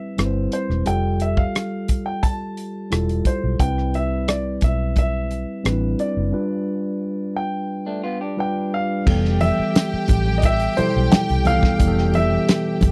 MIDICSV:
0, 0, Header, 1, 8, 480
1, 0, Start_track
1, 0, Tempo, 683371
1, 605, Time_signature, 4, 2, 24, 8
1, 9073, End_track
2, 0, Start_track
2, 0, Title_t, "Grand piano"
2, 0, Program_c, 0, 0
2, 0, Note_on_c, 0, 76, 78
2, 375, Note_on_c, 0, 72, 73
2, 396, Note_off_c, 0, 76, 0
2, 613, Note_on_c, 0, 79, 93
2, 617, Note_off_c, 0, 72, 0
2, 855, Note_on_c, 0, 76, 75
2, 856, Note_off_c, 0, 79, 0
2, 966, Note_on_c, 0, 77, 76
2, 974, Note_off_c, 0, 76, 0
2, 1418, Note_off_c, 0, 77, 0
2, 1445, Note_on_c, 0, 79, 75
2, 1565, Note_on_c, 0, 81, 87
2, 1569, Note_off_c, 0, 79, 0
2, 2296, Note_on_c, 0, 72, 68
2, 2308, Note_off_c, 0, 81, 0
2, 2515, Note_off_c, 0, 72, 0
2, 2528, Note_on_c, 0, 79, 92
2, 2775, Note_off_c, 0, 79, 0
2, 2776, Note_on_c, 0, 76, 77
2, 3008, Note_on_c, 0, 74, 79
2, 3019, Note_off_c, 0, 76, 0
2, 3255, Note_off_c, 0, 74, 0
2, 3261, Note_on_c, 0, 76, 78
2, 3491, Note_off_c, 0, 76, 0
2, 3502, Note_on_c, 0, 76, 79
2, 4213, Note_on_c, 0, 74, 73
2, 4237, Note_off_c, 0, 76, 0
2, 5144, Note_off_c, 0, 74, 0
2, 5173, Note_on_c, 0, 79, 82
2, 5864, Note_off_c, 0, 79, 0
2, 5902, Note_on_c, 0, 79, 84
2, 6139, Note_on_c, 0, 77, 85
2, 6143, Note_off_c, 0, 79, 0
2, 6608, Note_on_c, 0, 76, 99
2, 6629, Note_off_c, 0, 77, 0
2, 7252, Note_off_c, 0, 76, 0
2, 7290, Note_on_c, 0, 75, 72
2, 7335, Note_off_c, 0, 75, 0
2, 7343, Note_on_c, 0, 76, 101
2, 7560, Note_off_c, 0, 76, 0
2, 7565, Note_on_c, 0, 72, 89
2, 7809, Note_on_c, 0, 79, 100
2, 7815, Note_off_c, 0, 72, 0
2, 8055, Note_on_c, 0, 77, 111
2, 8057, Note_off_c, 0, 79, 0
2, 8534, Note_on_c, 0, 76, 99
2, 8547, Note_off_c, 0, 77, 0
2, 9073, Note_off_c, 0, 76, 0
2, 9073, End_track
3, 0, Start_track
3, 0, Title_t, "String section"
3, 0, Program_c, 1, 48
3, 6372, Note_on_c, 1, 67, 97
3, 6372, Note_on_c, 1, 79, 102
3, 9073, Note_off_c, 1, 67, 0
3, 9073, Note_off_c, 1, 79, 0
3, 9073, End_track
4, 0, Start_track
4, 0, Title_t, "Clean electric guitar"
4, 0, Program_c, 2, 27
4, 5524, Note_on_c, 2, 62, 58
4, 5529, Note_on_c, 2, 57, 53
4, 5641, Note_off_c, 2, 62, 0
4, 5644, Note_off_c, 2, 57, 0
4, 5644, Note_on_c, 2, 65, 67
4, 5648, Note_on_c, 2, 59, 57
4, 5761, Note_off_c, 2, 65, 0
4, 5763, Note_off_c, 2, 59, 0
4, 5767, Note_on_c, 2, 67, 56
4, 5771, Note_on_c, 2, 62, 48
4, 6341, Note_off_c, 2, 67, 0
4, 6343, Note_off_c, 2, 62, 0
4, 9073, End_track
5, 0, Start_track
5, 0, Title_t, "Tine electric piano"
5, 0, Program_c, 3, 4
5, 0, Control_c, 3, 64, 127
5, 0, Note_on_c, 3, 55, 67
5, 0, Note_on_c, 3, 60, 58
5, 0, Note_on_c, 3, 64, 57
5, 0, Note_on_c, 3, 71, 68
5, 119, Note_off_c, 3, 55, 0
5, 119, Note_on_c, 3, 55, 57
5, 125, Note_off_c, 3, 60, 0
5, 125, Note_on_c, 3, 60, 51
5, 128, Note_off_c, 3, 64, 0
5, 128, Note_on_c, 3, 64, 53
5, 134, Note_off_c, 3, 71, 0
5, 134, Note_on_c, 3, 71, 48
5, 175, Note_off_c, 3, 71, 0
5, 178, Note_on_c, 3, 72, 64
5, 551, Note_off_c, 3, 55, 0
5, 554, Note_off_c, 3, 60, 0
5, 555, Note_off_c, 3, 64, 0
5, 580, Note_off_c, 3, 72, 0
5, 598, Note_on_c, 3, 55, 65
5, 604, Note_on_c, 3, 67, 62
5, 609, Note_on_c, 3, 65, 62
5, 614, Note_on_c, 3, 69, 68
5, 615, Control_c, 3, 64, 0
5, 722, Control_c, 3, 64, 127
5, 1459, Note_off_c, 3, 55, 0
5, 1462, Note_off_c, 3, 67, 0
5, 1464, Note_off_c, 3, 65, 0
5, 1467, Note_off_c, 3, 69, 0
5, 2038, Note_on_c, 3, 55, 57
5, 2043, Note_on_c, 3, 64, 51
5, 2048, Note_on_c, 3, 65, 55
5, 2053, Note_on_c, 3, 69, 61
5, 2471, Note_off_c, 3, 55, 0
5, 2474, Note_off_c, 3, 64, 0
5, 2476, Note_off_c, 3, 65, 0
5, 2479, Note_off_c, 3, 69, 0
5, 2526, Note_on_c, 3, 55, 66
5, 2528, Note_on_c, 3, 60, 63
5, 2535, Note_on_c, 3, 64, 57
5, 2537, Control_c, 3, 64, 0
5, 2538, Note_on_c, 3, 71, 73
5, 2669, Control_c, 3, 64, 127
5, 3384, Note_off_c, 3, 55, 0
5, 3385, Note_off_c, 3, 60, 0
5, 3389, Note_off_c, 3, 64, 0
5, 3390, Note_off_c, 3, 71, 0
5, 3961, Note_on_c, 3, 55, 61
5, 3964, Note_on_c, 3, 60, 55
5, 3971, Note_on_c, 3, 62, 42
5, 3977, Note_on_c, 3, 71, 64
5, 4015, Note_on_c, 3, 64, 54
5, 4016, Note_off_c, 3, 62, 0
5, 4394, Note_off_c, 3, 55, 0
5, 4395, Note_off_c, 3, 60, 0
5, 4402, Note_off_c, 3, 71, 0
5, 4421, Note_off_c, 3, 64, 0
5, 4434, Note_on_c, 3, 55, 64
5, 4439, Note_on_c, 3, 62, 61
5, 4447, Note_on_c, 3, 65, 59
5, 4450, Note_on_c, 3, 71, 69
5, 4457, Control_c, 3, 64, 0
5, 4562, Control_c, 3, 64, 127
5, 5300, Note_off_c, 3, 55, 0
5, 5302, Note_off_c, 3, 62, 0
5, 5306, Note_off_c, 3, 65, 0
5, 5308, Note_off_c, 3, 71, 0
5, 5879, Note_on_c, 3, 55, 66
5, 5885, Note_on_c, 3, 62, 61
5, 5889, Note_on_c, 3, 65, 58
5, 5891, Note_on_c, 3, 71, 69
5, 6313, Note_off_c, 3, 55, 0
5, 6316, Note_off_c, 3, 62, 0
5, 6318, Note_off_c, 3, 65, 0
5, 6319, Note_off_c, 3, 71, 0
5, 6362, Note_on_c, 3, 55, 76
5, 6367, Note_on_c, 3, 59, 65
5, 6373, Note_on_c, 3, 52, 65
5, 6377, Note_on_c, 3, 69, 76
5, 6381, Control_c, 3, 64, 0
5, 6505, Control_c, 3, 64, 127
5, 7223, Note_off_c, 3, 55, 0
5, 7226, Note_off_c, 3, 59, 0
5, 7229, Note_off_c, 3, 52, 0
5, 7231, Note_off_c, 3, 69, 0
5, 7560, Note_on_c, 3, 55, 73
5, 7566, Note_on_c, 3, 47, 69
5, 7570, Note_on_c, 3, 64, 71
5, 7575, Note_on_c, 3, 69, 83
5, 7993, Note_off_c, 3, 55, 0
5, 7997, Note_off_c, 3, 47, 0
5, 7998, Note_off_c, 3, 64, 0
5, 8001, Note_off_c, 3, 69, 0
5, 8037, Note_on_c, 3, 55, 63
5, 8040, Note_on_c, 3, 59, 60
5, 8047, Note_on_c, 3, 52, 63
5, 8050, Note_on_c, 3, 69, 74
5, 8258, Note_off_c, 3, 55, 0
5, 8259, Note_off_c, 3, 59, 0
5, 8263, Note_off_c, 3, 52, 0
5, 8264, Note_off_c, 3, 69, 0
5, 8281, Note_on_c, 3, 55, 74
5, 8286, Note_on_c, 3, 59, 68
5, 8289, Note_on_c, 3, 52, 69
5, 8295, Note_on_c, 3, 67, 65
5, 8338, Note_off_c, 3, 67, 0
5, 8341, Note_on_c, 3, 69, 81
5, 9073, Note_off_c, 3, 52, 0
5, 9073, Note_off_c, 3, 55, 0
5, 9073, Note_off_c, 3, 59, 0
5, 9073, Note_off_c, 3, 69, 0
5, 9073, End_track
6, 0, Start_track
6, 0, Title_t, "Fingered electric bass"
6, 0, Program_c, 4, 33
6, 130, Note_on_c, 4, 31, 77
6, 328, Note_off_c, 4, 31, 0
6, 488, Note_on_c, 4, 28, 81
6, 587, Note_off_c, 4, 28, 0
6, 613, Note_on_c, 4, 29, 85
6, 1010, Note_off_c, 4, 29, 0
6, 2053, Note_on_c, 4, 28, 71
6, 2250, Note_off_c, 4, 28, 0
6, 2415, Note_on_c, 4, 35, 67
6, 2511, Note_off_c, 4, 35, 0
6, 2526, Note_on_c, 4, 36, 87
6, 3219, Note_off_c, 4, 36, 0
6, 3251, Note_on_c, 4, 35, 73
6, 3822, Note_off_c, 4, 35, 0
6, 3970, Note_on_c, 4, 33, 84
6, 4170, Note_off_c, 4, 33, 0
6, 4332, Note_on_c, 4, 30, 75
6, 4431, Note_off_c, 4, 30, 0
6, 6373, Note_on_c, 4, 29, 102
6, 6672, Note_off_c, 4, 29, 0
6, 7091, Note_on_c, 4, 33, 90
6, 7491, Note_off_c, 4, 33, 0
6, 7701, Note_on_c, 4, 35, 81
6, 7796, Note_off_c, 4, 35, 0
6, 7938, Note_on_c, 4, 36, 91
6, 8134, Note_off_c, 4, 36, 0
6, 8286, Note_on_c, 4, 29, 99
6, 8687, Note_off_c, 4, 29, 0
6, 9011, Note_on_c, 4, 31, 81
6, 9073, Note_off_c, 4, 31, 0
6, 9073, End_track
7, 0, Start_track
7, 0, Title_t, "Muted fingered electric bass strokes"
7, 6737, Note_on_c, 9, 29, 45
7, 6808, Note_off_c, 9, 29, 0
7, 6979, Note_on_c, 9, 29, 44
7, 7049, Note_off_c, 9, 29, 0
7, 7576, Note_on_c, 9, 29, 45
7, 7646, Note_off_c, 9, 29, 0
7, 7818, Note_on_c, 9, 29, 47
7, 7889, Note_off_c, 9, 29, 0
7, 9073, End_track
8, 0, Start_track
8, 0, Title_t, "Drums"
8, 128, Note_on_c, 9, 42, 69
8, 135, Note_on_c, 9, 37, 94
8, 198, Note_off_c, 9, 42, 0
8, 205, Note_off_c, 9, 37, 0
8, 364, Note_on_c, 9, 42, 72
8, 435, Note_off_c, 9, 42, 0
8, 496, Note_on_c, 9, 37, 31
8, 566, Note_off_c, 9, 37, 0
8, 603, Note_on_c, 9, 42, 73
8, 673, Note_off_c, 9, 42, 0
8, 842, Note_on_c, 9, 42, 62
8, 912, Note_off_c, 9, 42, 0
8, 963, Note_on_c, 9, 36, 83
8, 1034, Note_off_c, 9, 36, 0
8, 1091, Note_on_c, 9, 42, 75
8, 1096, Note_on_c, 9, 37, 96
8, 1162, Note_off_c, 9, 42, 0
8, 1166, Note_off_c, 9, 37, 0
8, 1323, Note_on_c, 9, 42, 68
8, 1328, Note_on_c, 9, 36, 81
8, 1393, Note_off_c, 9, 42, 0
8, 1398, Note_off_c, 9, 36, 0
8, 1566, Note_on_c, 9, 42, 61
8, 1568, Note_on_c, 9, 36, 88
8, 1636, Note_off_c, 9, 42, 0
8, 1638, Note_off_c, 9, 36, 0
8, 1808, Note_on_c, 9, 42, 62
8, 1878, Note_off_c, 9, 42, 0
8, 2049, Note_on_c, 9, 42, 74
8, 2055, Note_on_c, 9, 37, 92
8, 2119, Note_off_c, 9, 42, 0
8, 2125, Note_off_c, 9, 37, 0
8, 2173, Note_on_c, 9, 42, 49
8, 2243, Note_off_c, 9, 42, 0
8, 2284, Note_on_c, 9, 36, 82
8, 2284, Note_on_c, 9, 42, 67
8, 2354, Note_off_c, 9, 42, 0
8, 2355, Note_off_c, 9, 36, 0
8, 2526, Note_on_c, 9, 36, 98
8, 2526, Note_on_c, 9, 42, 75
8, 2596, Note_off_c, 9, 36, 0
8, 2596, Note_off_c, 9, 42, 0
8, 2657, Note_on_c, 9, 37, 31
8, 2727, Note_off_c, 9, 37, 0
8, 2768, Note_on_c, 9, 42, 60
8, 2838, Note_off_c, 9, 42, 0
8, 3007, Note_on_c, 9, 42, 80
8, 3011, Note_on_c, 9, 37, 101
8, 3077, Note_off_c, 9, 42, 0
8, 3082, Note_off_c, 9, 37, 0
8, 3238, Note_on_c, 9, 42, 71
8, 3247, Note_on_c, 9, 36, 87
8, 3309, Note_off_c, 9, 42, 0
8, 3317, Note_off_c, 9, 36, 0
8, 3483, Note_on_c, 9, 42, 63
8, 3487, Note_on_c, 9, 36, 86
8, 3553, Note_off_c, 9, 42, 0
8, 3557, Note_off_c, 9, 36, 0
8, 3727, Note_on_c, 9, 42, 66
8, 3798, Note_off_c, 9, 42, 0
8, 3970, Note_on_c, 9, 42, 69
8, 3976, Note_on_c, 9, 37, 96
8, 4040, Note_off_c, 9, 42, 0
8, 4046, Note_off_c, 9, 37, 0
8, 4209, Note_on_c, 9, 42, 66
8, 4279, Note_off_c, 9, 42, 0
8, 6370, Note_on_c, 9, 36, 112
8, 6371, Note_on_c, 9, 49, 93
8, 6374, Note_on_c, 9, 62, 32
8, 6440, Note_off_c, 9, 36, 0
8, 6442, Note_off_c, 9, 49, 0
8, 6444, Note_off_c, 9, 62, 0
8, 6497, Note_on_c, 9, 38, 34
8, 6567, Note_off_c, 9, 38, 0
8, 6606, Note_on_c, 9, 42, 68
8, 6612, Note_on_c, 9, 63, 65
8, 6677, Note_off_c, 9, 42, 0
8, 6683, Note_off_c, 9, 63, 0
8, 6841, Note_on_c, 9, 62, 29
8, 6852, Note_on_c, 9, 42, 86
8, 6856, Note_on_c, 9, 38, 109
8, 6912, Note_off_c, 9, 62, 0
8, 6922, Note_off_c, 9, 42, 0
8, 6927, Note_off_c, 9, 38, 0
8, 7079, Note_on_c, 9, 42, 75
8, 7083, Note_on_c, 9, 62, 32
8, 7083, Note_on_c, 9, 63, 66
8, 7083, Note_on_c, 9, 64, 67
8, 7089, Note_on_c, 9, 36, 89
8, 7149, Note_off_c, 9, 42, 0
8, 7153, Note_off_c, 9, 62, 0
8, 7153, Note_off_c, 9, 63, 0
8, 7153, Note_off_c, 9, 64, 0
8, 7159, Note_off_c, 9, 36, 0
8, 7207, Note_on_c, 9, 63, 68
8, 7277, Note_off_c, 9, 63, 0
8, 7320, Note_on_c, 9, 42, 70
8, 7329, Note_on_c, 9, 36, 102
8, 7330, Note_on_c, 9, 62, 34
8, 7390, Note_off_c, 9, 42, 0
8, 7399, Note_off_c, 9, 36, 0
8, 7401, Note_off_c, 9, 62, 0
8, 7443, Note_on_c, 9, 42, 53
8, 7513, Note_off_c, 9, 42, 0
8, 7566, Note_on_c, 9, 42, 71
8, 7569, Note_on_c, 9, 62, 33
8, 7569, Note_on_c, 9, 63, 53
8, 7636, Note_off_c, 9, 42, 0
8, 7639, Note_off_c, 9, 62, 0
8, 7639, Note_off_c, 9, 63, 0
8, 7807, Note_on_c, 9, 42, 87
8, 7809, Note_on_c, 9, 62, 32
8, 7809, Note_on_c, 9, 63, 68
8, 7814, Note_on_c, 9, 38, 111
8, 7878, Note_off_c, 9, 42, 0
8, 7880, Note_off_c, 9, 62, 0
8, 7880, Note_off_c, 9, 63, 0
8, 7884, Note_off_c, 9, 38, 0
8, 7931, Note_on_c, 9, 42, 54
8, 8001, Note_off_c, 9, 42, 0
8, 8043, Note_on_c, 9, 42, 78
8, 8047, Note_on_c, 9, 62, 30
8, 8047, Note_on_c, 9, 63, 70
8, 8047, Note_on_c, 9, 64, 72
8, 8113, Note_off_c, 9, 42, 0
8, 8117, Note_off_c, 9, 62, 0
8, 8117, Note_off_c, 9, 63, 0
8, 8117, Note_off_c, 9, 64, 0
8, 8168, Note_on_c, 9, 36, 91
8, 8169, Note_on_c, 9, 64, 70
8, 8175, Note_on_c, 9, 38, 36
8, 8238, Note_off_c, 9, 36, 0
8, 8239, Note_off_c, 9, 64, 0
8, 8245, Note_off_c, 9, 38, 0
8, 8284, Note_on_c, 9, 42, 85
8, 8287, Note_on_c, 9, 36, 112
8, 8290, Note_on_c, 9, 62, 31
8, 8355, Note_off_c, 9, 42, 0
8, 8357, Note_off_c, 9, 36, 0
8, 8360, Note_off_c, 9, 62, 0
8, 8415, Note_on_c, 9, 38, 35
8, 8485, Note_off_c, 9, 38, 0
8, 8522, Note_on_c, 9, 62, 29
8, 8522, Note_on_c, 9, 63, 67
8, 8525, Note_on_c, 9, 42, 70
8, 8593, Note_off_c, 9, 62, 0
8, 8593, Note_off_c, 9, 63, 0
8, 8595, Note_off_c, 9, 42, 0
8, 8762, Note_on_c, 9, 62, 30
8, 8770, Note_on_c, 9, 42, 89
8, 8774, Note_on_c, 9, 38, 105
8, 8832, Note_off_c, 9, 62, 0
8, 8840, Note_off_c, 9, 42, 0
8, 8845, Note_off_c, 9, 38, 0
8, 8997, Note_on_c, 9, 62, 32
8, 8997, Note_on_c, 9, 63, 74
8, 8997, Note_on_c, 9, 64, 71
8, 8999, Note_on_c, 9, 42, 78
8, 9009, Note_on_c, 9, 36, 101
8, 9067, Note_off_c, 9, 62, 0
8, 9067, Note_off_c, 9, 63, 0
8, 9067, Note_off_c, 9, 64, 0
8, 9069, Note_off_c, 9, 42, 0
8, 9073, Note_off_c, 9, 36, 0
8, 9073, End_track
0, 0, End_of_file